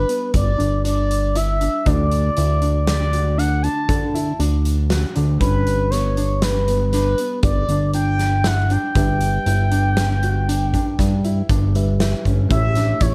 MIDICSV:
0, 0, Header, 1, 6, 480
1, 0, Start_track
1, 0, Tempo, 506757
1, 1767, Time_signature, 7, 2, 24, 8
1, 12452, End_track
2, 0, Start_track
2, 0, Title_t, "Analog synth lead"
2, 0, Program_c, 0, 81
2, 0, Note_on_c, 0, 71, 87
2, 297, Note_off_c, 0, 71, 0
2, 341, Note_on_c, 0, 74, 86
2, 781, Note_off_c, 0, 74, 0
2, 811, Note_on_c, 0, 74, 82
2, 1291, Note_on_c, 0, 76, 95
2, 1306, Note_off_c, 0, 74, 0
2, 1772, Note_on_c, 0, 74, 105
2, 1786, Note_off_c, 0, 76, 0
2, 2716, Note_off_c, 0, 74, 0
2, 2722, Note_on_c, 0, 74, 92
2, 3200, Note_on_c, 0, 78, 85
2, 3214, Note_off_c, 0, 74, 0
2, 3433, Note_on_c, 0, 81, 95
2, 3447, Note_off_c, 0, 78, 0
2, 4163, Note_off_c, 0, 81, 0
2, 5118, Note_on_c, 0, 71, 97
2, 5594, Note_on_c, 0, 73, 84
2, 5608, Note_off_c, 0, 71, 0
2, 6081, Note_on_c, 0, 71, 85
2, 6095, Note_off_c, 0, 73, 0
2, 6547, Note_off_c, 0, 71, 0
2, 6552, Note_on_c, 0, 71, 92
2, 7007, Note_off_c, 0, 71, 0
2, 7049, Note_on_c, 0, 74, 91
2, 7495, Note_off_c, 0, 74, 0
2, 7525, Note_on_c, 0, 79, 98
2, 8019, Note_on_c, 0, 78, 98
2, 8033, Note_off_c, 0, 79, 0
2, 8257, Note_on_c, 0, 79, 97
2, 8271, Note_off_c, 0, 78, 0
2, 11369, Note_off_c, 0, 79, 0
2, 11849, Note_on_c, 0, 76, 103
2, 12325, Note_on_c, 0, 73, 92
2, 12339, Note_off_c, 0, 76, 0
2, 12452, Note_off_c, 0, 73, 0
2, 12452, End_track
3, 0, Start_track
3, 0, Title_t, "Tine electric piano"
3, 0, Program_c, 1, 4
3, 0, Note_on_c, 1, 55, 53
3, 0, Note_on_c, 1, 62, 58
3, 0, Note_on_c, 1, 67, 43
3, 0, Note_on_c, 1, 71, 47
3, 1722, Note_off_c, 1, 55, 0
3, 1726, Note_off_c, 1, 67, 0
3, 1731, Note_off_c, 1, 71, 0
3, 1734, Note_off_c, 1, 62, 0
3, 1756, Note_on_c, 1, 50, 55
3, 1759, Note_on_c, 1, 57, 45
3, 1768, Note_on_c, 1, 66, 49
3, 1778, Note_on_c, 1, 74, 58
3, 5088, Note_off_c, 1, 50, 0
3, 5090, Note_off_c, 1, 57, 0
3, 5094, Note_off_c, 1, 66, 0
3, 5099, Note_off_c, 1, 74, 0
3, 5107, Note_on_c, 1, 55, 57
3, 5114, Note_on_c, 1, 67, 49
3, 5127, Note_on_c, 1, 71, 47
3, 5135, Note_on_c, 1, 62, 59
3, 8438, Note_off_c, 1, 55, 0
3, 8441, Note_off_c, 1, 67, 0
3, 8448, Note_off_c, 1, 71, 0
3, 8452, Note_off_c, 1, 62, 0
3, 8476, Note_on_c, 1, 55, 50
3, 8482, Note_on_c, 1, 67, 51
3, 8490, Note_on_c, 1, 71, 47
3, 8501, Note_on_c, 1, 76, 54
3, 11081, Note_off_c, 1, 55, 0
3, 11084, Note_off_c, 1, 67, 0
3, 11088, Note_off_c, 1, 71, 0
3, 11093, Note_off_c, 1, 76, 0
3, 11132, Note_on_c, 1, 55, 49
3, 11136, Note_on_c, 1, 71, 46
3, 11138, Note_on_c, 1, 67, 45
3, 11142, Note_on_c, 1, 76, 53
3, 11830, Note_on_c, 1, 57, 57
3, 11835, Note_off_c, 1, 67, 0
3, 11839, Note_on_c, 1, 64, 48
3, 11846, Note_on_c, 1, 67, 50
3, 11848, Note_off_c, 1, 55, 0
3, 11850, Note_off_c, 1, 71, 0
3, 11853, Note_off_c, 1, 76, 0
3, 11854, Note_on_c, 1, 73, 64
3, 12452, Note_off_c, 1, 57, 0
3, 12452, Note_off_c, 1, 64, 0
3, 12452, Note_off_c, 1, 67, 0
3, 12452, Note_off_c, 1, 73, 0
3, 12452, End_track
4, 0, Start_track
4, 0, Title_t, "Grand piano"
4, 0, Program_c, 2, 0
4, 77, Note_on_c, 2, 59, 62
4, 478, Note_off_c, 2, 59, 0
4, 550, Note_on_c, 2, 62, 64
4, 755, Note_off_c, 2, 62, 0
4, 798, Note_on_c, 2, 62, 70
4, 1200, Note_off_c, 2, 62, 0
4, 1284, Note_on_c, 2, 64, 69
4, 1484, Note_off_c, 2, 64, 0
4, 1522, Note_on_c, 2, 62, 57
4, 1724, Note_off_c, 2, 62, 0
4, 1769, Note_on_c, 2, 62, 67
4, 2167, Note_off_c, 2, 62, 0
4, 2251, Note_on_c, 2, 64, 62
4, 2450, Note_off_c, 2, 64, 0
4, 2479, Note_on_c, 2, 62, 61
4, 2882, Note_off_c, 2, 62, 0
4, 2961, Note_on_c, 2, 66, 60
4, 3164, Note_off_c, 2, 66, 0
4, 3199, Note_on_c, 2, 62, 68
4, 3403, Note_off_c, 2, 62, 0
4, 3449, Note_on_c, 2, 62, 61
4, 3848, Note_off_c, 2, 62, 0
4, 3927, Note_on_c, 2, 64, 66
4, 4128, Note_off_c, 2, 64, 0
4, 4166, Note_on_c, 2, 62, 72
4, 4566, Note_off_c, 2, 62, 0
4, 4644, Note_on_c, 2, 66, 70
4, 4846, Note_off_c, 2, 66, 0
4, 4882, Note_on_c, 2, 62, 62
4, 5085, Note_off_c, 2, 62, 0
4, 5132, Note_on_c, 2, 61, 70
4, 5530, Note_off_c, 2, 61, 0
4, 5606, Note_on_c, 2, 59, 64
4, 5807, Note_off_c, 2, 59, 0
4, 5846, Note_on_c, 2, 62, 68
4, 6246, Note_off_c, 2, 62, 0
4, 6325, Note_on_c, 2, 59, 66
4, 6526, Note_off_c, 2, 59, 0
4, 6570, Note_on_c, 2, 62, 73
4, 6769, Note_off_c, 2, 62, 0
4, 6815, Note_on_c, 2, 59, 67
4, 7210, Note_off_c, 2, 59, 0
4, 7295, Note_on_c, 2, 62, 63
4, 7491, Note_off_c, 2, 62, 0
4, 7524, Note_on_c, 2, 62, 67
4, 7923, Note_off_c, 2, 62, 0
4, 8007, Note_on_c, 2, 64, 70
4, 8206, Note_off_c, 2, 64, 0
4, 8251, Note_on_c, 2, 62, 70
4, 8448, Note_off_c, 2, 62, 0
4, 8488, Note_on_c, 2, 62, 67
4, 8885, Note_off_c, 2, 62, 0
4, 8968, Note_on_c, 2, 64, 65
4, 9166, Note_off_c, 2, 64, 0
4, 9201, Note_on_c, 2, 62, 61
4, 9601, Note_off_c, 2, 62, 0
4, 9691, Note_on_c, 2, 66, 65
4, 9888, Note_off_c, 2, 66, 0
4, 9932, Note_on_c, 2, 62, 68
4, 10128, Note_off_c, 2, 62, 0
4, 10172, Note_on_c, 2, 62, 63
4, 10567, Note_off_c, 2, 62, 0
4, 10651, Note_on_c, 2, 64, 62
4, 10847, Note_off_c, 2, 64, 0
4, 10889, Note_on_c, 2, 62, 67
4, 11285, Note_off_c, 2, 62, 0
4, 11373, Note_on_c, 2, 64, 70
4, 11568, Note_off_c, 2, 64, 0
4, 11611, Note_on_c, 2, 61, 59
4, 11807, Note_off_c, 2, 61, 0
4, 11850, Note_on_c, 2, 61, 65
4, 12046, Note_off_c, 2, 61, 0
4, 12093, Note_on_c, 2, 62, 64
4, 12288, Note_off_c, 2, 62, 0
4, 12334, Note_on_c, 2, 64, 69
4, 12452, Note_off_c, 2, 64, 0
4, 12452, End_track
5, 0, Start_track
5, 0, Title_t, "Analog synth bass"
5, 0, Program_c, 3, 38
5, 321, Note_on_c, 3, 31, 100
5, 529, Note_off_c, 3, 31, 0
5, 566, Note_on_c, 3, 31, 79
5, 1601, Note_off_c, 3, 31, 0
5, 1767, Note_on_c, 3, 38, 97
5, 2182, Note_off_c, 3, 38, 0
5, 2250, Note_on_c, 3, 38, 83
5, 3491, Note_off_c, 3, 38, 0
5, 3684, Note_on_c, 3, 50, 86
5, 4101, Note_off_c, 3, 50, 0
5, 4163, Note_on_c, 3, 38, 90
5, 4787, Note_off_c, 3, 38, 0
5, 4895, Note_on_c, 3, 38, 88
5, 5100, Note_off_c, 3, 38, 0
5, 5121, Note_on_c, 3, 31, 87
5, 6776, Note_off_c, 3, 31, 0
5, 7038, Note_on_c, 3, 31, 96
5, 7249, Note_off_c, 3, 31, 0
5, 7281, Note_on_c, 3, 31, 87
5, 8316, Note_off_c, 3, 31, 0
5, 8483, Note_on_c, 3, 31, 92
5, 8898, Note_off_c, 3, 31, 0
5, 8962, Note_on_c, 3, 31, 87
5, 10202, Note_off_c, 3, 31, 0
5, 10413, Note_on_c, 3, 43, 91
5, 10822, Note_off_c, 3, 43, 0
5, 10892, Note_on_c, 3, 31, 84
5, 11508, Note_off_c, 3, 31, 0
5, 11612, Note_on_c, 3, 31, 81
5, 11815, Note_off_c, 3, 31, 0
5, 11846, Note_on_c, 3, 33, 105
5, 12258, Note_off_c, 3, 33, 0
5, 12323, Note_on_c, 3, 33, 81
5, 12452, Note_off_c, 3, 33, 0
5, 12452, End_track
6, 0, Start_track
6, 0, Title_t, "Drums"
6, 84, Note_on_c, 9, 42, 52
6, 179, Note_off_c, 9, 42, 0
6, 318, Note_on_c, 9, 42, 73
6, 322, Note_on_c, 9, 36, 84
6, 412, Note_off_c, 9, 42, 0
6, 417, Note_off_c, 9, 36, 0
6, 565, Note_on_c, 9, 42, 55
6, 659, Note_off_c, 9, 42, 0
6, 803, Note_on_c, 9, 42, 74
6, 898, Note_off_c, 9, 42, 0
6, 1048, Note_on_c, 9, 42, 63
6, 1142, Note_off_c, 9, 42, 0
6, 1281, Note_on_c, 9, 42, 68
6, 1376, Note_off_c, 9, 42, 0
6, 1523, Note_on_c, 9, 42, 46
6, 1618, Note_off_c, 9, 42, 0
6, 1760, Note_on_c, 9, 42, 64
6, 1765, Note_on_c, 9, 36, 84
6, 1855, Note_off_c, 9, 42, 0
6, 1859, Note_off_c, 9, 36, 0
6, 2001, Note_on_c, 9, 42, 50
6, 2095, Note_off_c, 9, 42, 0
6, 2239, Note_on_c, 9, 42, 67
6, 2334, Note_off_c, 9, 42, 0
6, 2477, Note_on_c, 9, 42, 41
6, 2572, Note_off_c, 9, 42, 0
6, 2723, Note_on_c, 9, 38, 99
6, 2723, Note_on_c, 9, 42, 63
6, 2818, Note_off_c, 9, 38, 0
6, 2818, Note_off_c, 9, 42, 0
6, 2964, Note_on_c, 9, 42, 52
6, 3058, Note_off_c, 9, 42, 0
6, 3212, Note_on_c, 9, 42, 65
6, 3306, Note_off_c, 9, 42, 0
6, 3444, Note_on_c, 9, 42, 44
6, 3539, Note_off_c, 9, 42, 0
6, 3684, Note_on_c, 9, 36, 87
6, 3685, Note_on_c, 9, 42, 71
6, 3779, Note_off_c, 9, 36, 0
6, 3780, Note_off_c, 9, 42, 0
6, 3933, Note_on_c, 9, 42, 56
6, 4028, Note_off_c, 9, 42, 0
6, 4164, Note_on_c, 9, 42, 69
6, 4259, Note_off_c, 9, 42, 0
6, 4405, Note_on_c, 9, 42, 56
6, 4500, Note_off_c, 9, 42, 0
6, 4643, Note_on_c, 9, 38, 90
6, 4643, Note_on_c, 9, 42, 66
6, 4738, Note_off_c, 9, 38, 0
6, 4738, Note_off_c, 9, 42, 0
6, 4882, Note_on_c, 9, 42, 45
6, 4976, Note_off_c, 9, 42, 0
6, 5120, Note_on_c, 9, 42, 66
6, 5122, Note_on_c, 9, 36, 91
6, 5215, Note_off_c, 9, 42, 0
6, 5217, Note_off_c, 9, 36, 0
6, 5366, Note_on_c, 9, 42, 52
6, 5460, Note_off_c, 9, 42, 0
6, 5604, Note_on_c, 9, 38, 25
6, 5604, Note_on_c, 9, 42, 62
6, 5699, Note_off_c, 9, 38, 0
6, 5699, Note_off_c, 9, 42, 0
6, 5844, Note_on_c, 9, 42, 47
6, 5939, Note_off_c, 9, 42, 0
6, 6081, Note_on_c, 9, 38, 95
6, 6081, Note_on_c, 9, 42, 76
6, 6176, Note_off_c, 9, 38, 0
6, 6176, Note_off_c, 9, 42, 0
6, 6324, Note_on_c, 9, 42, 52
6, 6419, Note_off_c, 9, 42, 0
6, 6560, Note_on_c, 9, 38, 32
6, 6560, Note_on_c, 9, 42, 69
6, 6655, Note_off_c, 9, 38, 0
6, 6655, Note_off_c, 9, 42, 0
6, 6799, Note_on_c, 9, 42, 52
6, 6893, Note_off_c, 9, 42, 0
6, 7034, Note_on_c, 9, 42, 67
6, 7039, Note_on_c, 9, 36, 95
6, 7129, Note_off_c, 9, 42, 0
6, 7134, Note_off_c, 9, 36, 0
6, 7279, Note_on_c, 9, 42, 49
6, 7374, Note_off_c, 9, 42, 0
6, 7514, Note_on_c, 9, 42, 63
6, 7609, Note_off_c, 9, 42, 0
6, 7759, Note_on_c, 9, 38, 31
6, 7759, Note_on_c, 9, 42, 57
6, 7854, Note_off_c, 9, 38, 0
6, 7854, Note_off_c, 9, 42, 0
6, 7996, Note_on_c, 9, 38, 92
6, 7996, Note_on_c, 9, 42, 67
6, 8091, Note_off_c, 9, 38, 0
6, 8091, Note_off_c, 9, 42, 0
6, 8239, Note_on_c, 9, 42, 45
6, 8334, Note_off_c, 9, 42, 0
6, 8478, Note_on_c, 9, 42, 67
6, 8482, Note_on_c, 9, 36, 90
6, 8573, Note_off_c, 9, 42, 0
6, 8576, Note_off_c, 9, 36, 0
6, 8718, Note_on_c, 9, 42, 54
6, 8812, Note_off_c, 9, 42, 0
6, 8962, Note_on_c, 9, 42, 63
6, 9056, Note_off_c, 9, 42, 0
6, 9201, Note_on_c, 9, 42, 52
6, 9295, Note_off_c, 9, 42, 0
6, 9442, Note_on_c, 9, 38, 97
6, 9442, Note_on_c, 9, 42, 73
6, 9537, Note_off_c, 9, 38, 0
6, 9537, Note_off_c, 9, 42, 0
6, 9686, Note_on_c, 9, 42, 51
6, 9781, Note_off_c, 9, 42, 0
6, 9934, Note_on_c, 9, 42, 78
6, 10029, Note_off_c, 9, 42, 0
6, 10170, Note_on_c, 9, 36, 59
6, 10174, Note_on_c, 9, 42, 53
6, 10265, Note_off_c, 9, 36, 0
6, 10269, Note_off_c, 9, 42, 0
6, 10409, Note_on_c, 9, 36, 80
6, 10414, Note_on_c, 9, 38, 26
6, 10414, Note_on_c, 9, 42, 68
6, 10504, Note_off_c, 9, 36, 0
6, 10509, Note_off_c, 9, 38, 0
6, 10509, Note_off_c, 9, 42, 0
6, 10649, Note_on_c, 9, 42, 50
6, 10744, Note_off_c, 9, 42, 0
6, 10887, Note_on_c, 9, 36, 92
6, 10889, Note_on_c, 9, 42, 67
6, 10982, Note_off_c, 9, 36, 0
6, 10984, Note_off_c, 9, 42, 0
6, 11129, Note_on_c, 9, 42, 51
6, 11224, Note_off_c, 9, 42, 0
6, 11369, Note_on_c, 9, 38, 91
6, 11369, Note_on_c, 9, 42, 68
6, 11463, Note_off_c, 9, 38, 0
6, 11463, Note_off_c, 9, 42, 0
6, 11607, Note_on_c, 9, 36, 57
6, 11613, Note_on_c, 9, 42, 48
6, 11702, Note_off_c, 9, 36, 0
6, 11708, Note_off_c, 9, 42, 0
6, 11843, Note_on_c, 9, 42, 68
6, 11845, Note_on_c, 9, 36, 102
6, 11938, Note_off_c, 9, 42, 0
6, 11940, Note_off_c, 9, 36, 0
6, 12078, Note_on_c, 9, 38, 30
6, 12078, Note_on_c, 9, 42, 58
6, 12173, Note_off_c, 9, 38, 0
6, 12173, Note_off_c, 9, 42, 0
6, 12317, Note_on_c, 9, 42, 70
6, 12322, Note_on_c, 9, 36, 89
6, 12412, Note_off_c, 9, 42, 0
6, 12417, Note_off_c, 9, 36, 0
6, 12452, End_track
0, 0, End_of_file